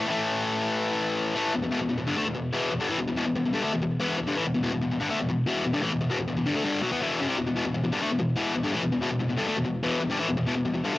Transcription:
distorted electric guitar
0.08 A2 E3 A3
1.35 A2 E3 A3
1.54 E2 B2
1.62 E2 B2
1.71 E2 B2
1.80 E2 B2
1.89 E2 B2
1.98 E2 B2
2.07 G2 D3
2.17 D3 A3
2.26 E2 B2
2.35 E2 B2
2.53 E2 B2 E3
2.71 E2 B2
2.80 G2 D3
2.89 A2 E3
2.99 E2 B2
3.08 E2 B2
3.17 E2 B2
3.27 E2 B2
3.36 E2 B2
3.46 E2 B2
3.53 G2 D3
3.64 D3 A3
3.73 E2 B2
3.82 E2 B2
4.00 E2 B2 E3
4.18 E2 B2
4.27 G2 D3
4.36 A2 E3
4.45 E2 B2
4.54 E2 B2
4.63 E2 B2
4.72 E2 B2
4.81 E2 B2
4.91 E2 B2
5.00 G2 D3
5.09 D3 A3
5.20 E2 B2
5.29 E2 B2
5.46 E2 B2 E3
5.65 E2 B2
5.73 G2 D3
5.82 A2 E3
5.92 E2 B2
6.01 E2 B2
6.10 E2 B2
6.19 E2 B2
6.28 E2 B2
6.37 E2 B2
6.46 G2 D3
6.55 D3 A3
6.64 G2 D3 G3
6.82 B2 F#3
6.92 E3 B3
7.01 E2 B2 E3
7.20 F#2 C#3
7.28 C3 G3
7.38 E2 B2
7.46 E2 B2
7.56 E2 B2
7.65 E2 B2
7.74 E2 B2
7.84 E2 B2
7.92 G2 D3
8.01 D3 A3
8.11 E2 B2
8.19 E2 B2
8.37 E2 B2 E3
8.55 E2 B2
8.64 G2 D3
8.73 A2 E3
8.83 E2 B2
8.92 E2 B2
9.01 E2 B2
9.10 E2 B2
9.19 E2 B2
9.28 E2 B2
9.36 G2 D3
9.46 D3 A3
9.56 E2 B2
9.64 E2 B2
9.83 E2 B2 E3
10.00 E2 B2
10.10 G2 D3
10.20 A2 E3
10.29 E2 B2
10.37 E2 B2
10.46 E2 B2
10.55 E2 B2
10.65 E2 B2
10.74 E2 B2
10.84 G2 D3
10.93 D3 A3

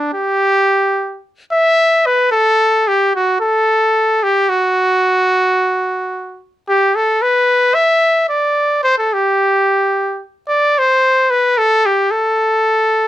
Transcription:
trumpet
Already playing: D4
0.13 G4
1.52 E5
2.06 B4
2.31 A4
2.88 G4
3.15 F#4
3.40 A4
4.23 G4
4.49 F#4
6.69 G4
6.95 A4
7.22 B4
7.74 E5
8.29 D5
8.84 C5
8.98 A4
9.13 G4
10.48 D5
10.79 C5
11.30 B4
11.58 A4
11.86 G4
12.11 A4

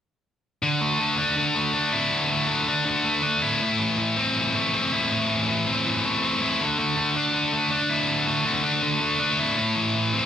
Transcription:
distorted electric guitar
0.63 D3
0.81 A3
1.00 D3
1.18 D4
1.37 D3
1.55 A3
1.74 D4
1.93 E4
2.12 D3
2.31 A3
2.49 D3
2.68 D4
2.86 D3
3.04 A3
3.23 D4
3.42 E4
3.61 A2
3.79 E3
3.98 E3
4.17 C4
4.35 E3
4.55 A3
4.73 C4
4.92 E4
5.11 A2
5.30 E3
5.48 E3
5.67 C4
5.85 E3
6.05 A3
6.23 C4
6.42 E4
6.61 D3
6.78 A3
6.97 D3
7.16 D4
7.34 D3
7.53 A3
7.71 D4
7.89 E4
8.07 D3
8.27 A3
8.46 D3
8.63 D4
8.83 D3
9.01 A3
9.20 D4
9.39 E4
9.57 A2
9.76 E3
9.95 E3
10.13 C4

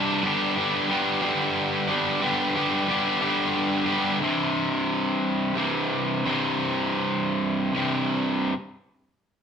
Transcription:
distorted electric guitar
Already playing: C2 G2 C3 G3 D4
0.23 G2 D3 G3 B3 D4 G4
0.56 G3 B3 D4 G4
0.88 G3 B3 D4 G4
1.22 G2 D3 G3 B3 D4 G4
1.88 G3 B3 D4 G4
2.22 G2 D3 G3 B3 D4 G4
2.56 G3 B3 D4 G4
2.88 G3 B3 D4 G4
3.21 G2 D3 G3 B3 D4 G4
3.86 G3 B3 D4 G4
4.20 C2 G2 C3
5.54 C2 G2 C3
6.25 C2 G2 C3
7.74 C2 G2 C3

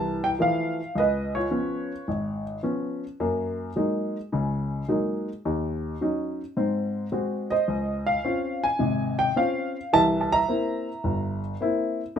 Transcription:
grand piano
Already playing: C2 E3 A5
0.24 G5
0.39 E3 F3 A3 F5
0.95 C#2 B4 D#5
1.35 F4 C#5
1.51 F3 B3 C#4
2.08 G#1
2.63 F3 B3 C#4
3.20 F#2 A#3
3.76 F#3 G#3 A#3 D#4
4.33 C#2 C#3
4.88 F#3 G#3 A#3 D#4
5.45 D#2
6.01 F#3 C#4 D#4
6.57 G#2 C4
7.12 G#3 C4 F#4
7.50 C5 D#5
7.68 C#2
8.06 F5
8.24 C4 C#4 F4
8.64 G#5
8.79 G#1 C3
9.19 G5
9.36 C4 C#4 F4 F5
9.93 C2 E3 E5 A5
10.21 A5
10.32 E5 A#5
10.48 A#3 C4 E4
11.04 G1
11.61 A#3 C4 E4

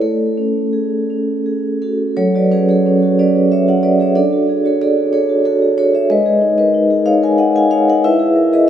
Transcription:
vibraphone
0.02 A3 A4
0.38 C#4
0.73 G#4
1.10 C#4
1.46 G#4
1.82 C#4 F#4 A4
2.17 F#3 A4 C#5
2.34 F#4 B4 D5
2.51 C#4 G#4 B4
2.69 G#4 A4 C#5
2.86 C#4
3.02 F#4
3.19 C#4 B4 D5
3.36 G#4
3.52 C#5 E5
3.67 F#4 D5 F#5
3.83 C#4 B4 D5
4.00 G#4 C#5 E5
4.15 D4 A4 D5
4.33 F#4
4.49 G#4
4.64 F#4 A4 C#5
4.82 G#4 A4 D5
4.97 F#4
5.13 G#4 A4 C#5
5.29 F#4
5.45 F#4 A4
5.62 G#4
5.78 F#4 A4 C#5
5.94 G#4 C#5 E5
6.10 G#3 B4 D#5
6.26 G#4
6.41 D#4
6.58 A#4 B4 D#5
6.74 D#4
6.91 G#4
7.06 D#4 C#5 F5
7.23 A#4 F5 G#5
7.38 D#5 F#5
7.55 G#4 F5 G#5
7.71 D#4 C#5 F5
7.88 A#4 D#5 F#5
8.04 E4 B4 E5
8.19 G#4
8.36 A#4
8.53 G#4 B4 D#5

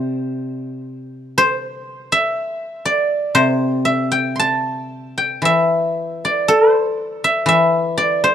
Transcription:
guzheng
Already playing: C3 C5 D5
1.38 C5
2.12 E5
2.85 D5
3.35 C3 C5
3.85 E5
4.12 G5
4.36 A5 C6
5.18 G5
5.42 E3 E5
6.25 D5
6.48 A4
6.71 C5
7.24 E5
7.46 E3 E5
7.98 D5
8.24 C5

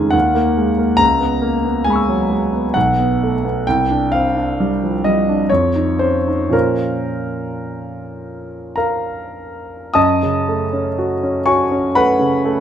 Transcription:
grand piano
Already playing: F2 C#3 D#3 G3 G#3 D#5 G#5 A#5 C6 F6
0.10 D#2 F#5
0.35 A#3
0.57 G#3
0.78 A#3
0.97 C#2 A#5
1.21 B3
1.42 A#3
1.65 B3
1.84 G#3 G#5
1.90 B5 C#6
1.96 E6
2.09 F#3
2.30 G#3
2.53 B3
2.74 B1 F#5
3.00 B3
3.23 A3
3.45 B3
3.67 C2 G5
3.90 D4
4.12 C4 F5
4.36 D4
4.60 G3
4.83 F3
5.04 G3 D#5
5.29 D4
5.50 F2 C#5
5.76 D#4
5.99 C#4 C5
6.28 D#4
6.49 A#2 F3 C#4 F4 A#4
6.54 C5
8.76 A#4 F5 A#5
9.94 F#2 D#5 A5 D#6
10.23 C#3
10.48 A3
10.73 C#4
10.98 F#4
11.23 C#4
11.46 F#4 C#5 G#5 C#6
11.71 C#4
11.95 A3 B4 F#5 B5
12.19 C#3
12.45 A3

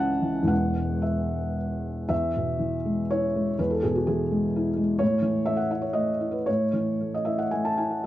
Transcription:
felt piano
Already playing: C#2 E3 C#4 E4 F#5 A5
0.22 E3
0.43 E2 E3 G#3 B3
0.47 E1 F#5
1.02 E5
2.09 E2 E5
2.36 B2
2.59 E3
2.85 G#3
3.10 E4 C#5
3.36 G#3
3.59 E2 B4
3.70 A4
3.83 B2 G#4
3.95 F#4
4.07 E3 G#4
4.31 G#3
4.56 E4
4.76 G#3
4.99 A2 C#5
5.22 E3
5.46 A3 E5
5.57 F#5
5.71 E4 E5
5.82 C#5
5.93 A3 D#5
6.20 E4
6.31 B4
6.46 A2 C#5
6.73 E3
7.00 A3
7.14 D#5
7.25 E4 E5
7.38 F#5
7.51 A3 G#5
7.65 A5
7.78 E4 G#5
7.90 F#5

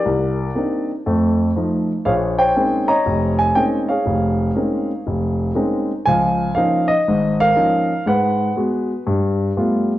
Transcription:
grand piano
Already playing: G4 A#4 D5
0.05 C2
0.55 A#3 C4 D4 D#4
1.06 F2 A3
1.56 F3 A3 D#4
2.05 A#1 G#4 C#5 F5
2.38 C5 C#5 G5
2.56 G#3 A#3 C4 C#4 D#4
2.88 C#5 D#5 A#5
3.06 F1
3.38 G#5
3.55 G#3 A#3 C4 C#4 D#4 G5
3.89 G#4 C#5 F5
4.06 F1
4.55 G#3 A#3 C4 C#4 D#4
5.07 F1
5.55 G#3 A#3 C4 C#4 D#4
6.05 C#2 F3 F5 G#5
6.55 F3 A#3 C#4 D#4 F5
6.88 D#5
7.08 G#1 G#2
7.40 A#4 F5
7.55 F3 A#3 C#4 D#4
8.06 G#2 G#3 B4 F#5
8.56 G#3 B3 F#4
9.07 G2
9.57 G3 A3 B3 F4

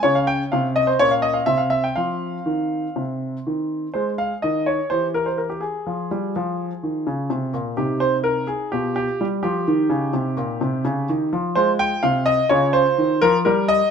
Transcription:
grand piano
0.03 C#3 C#4 C#5
0.15 F5
0.27 G5
0.52 C3 F5
0.76 D#5
0.87 C5
0.99 A#2 C#4 C#5
1.11 F5
1.22 D#5
1.34 F5
1.46 C3 C4 E5
1.58 F5
1.70 E5
1.84 G5
1.96 F3 C4 F5
2.46 D#3
2.96 C3
3.47 D#3
3.94 G#3 G#4 C5
4.18 F5
4.42 D#3 D#5
4.66 C#5
4.90 E3 G4 C5
5.14 A#4
5.26 C5
5.38 A#4
5.50 G4
5.61 G#4
5.86 F3 F4
6.11 G3
6.36 F3
6.83 D#3
7.07 C#3
7.30 C3
7.54 A#2
7.77 C3 D#4 G4
8.00 C5
8.24 A#4
8.47 G#4
8.72 B2 F4 G4
8.96 G4
9.21 G3
9.43 F3 G4
9.68 D#3 D#4
9.90 C#3
10.14 C3
10.37 A#2
10.61 C3
10.85 C#3
11.09 D#3
11.33 F3
11.55 G#3 F4 C5
11.79 G5
12.03 C3 F5
12.26 D#5
12.49 C#3 F4 C#5
12.73 C5
12.98 D#3
13.22 F3 A#4
13.45 G3 G4 A#4
13.68 D#5

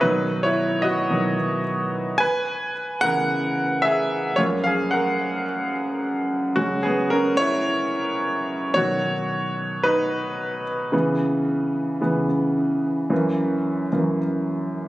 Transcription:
grand piano
0.01 B2 D#3 F#3 D#4 B4
0.43 E4 C#5
0.82 F#4 D#5
1.10 B2 D#3 F#3
2.18 B4 G#5
3.01 C#3 E3 B3 A#4 F#5
3.82 G#4 E5
4.36 F#2 F3 A#3 F4 C#5
4.64 G#4 F5
4.91 A#4 F#5
6.56 F#2 C#3 G#3 C#4 F#4
6.83 B3 G#4
7.10 C#4 A#4
7.37 E4 C#5
8.74 B2 D#3 F#3 F#4 C#5
9.83 D#4 B4
10.92 C#3 E3 B3
12.01 C#3 E3 B3
13.10 F#2 E3 A#3
13.93 F#2 E3 A#3

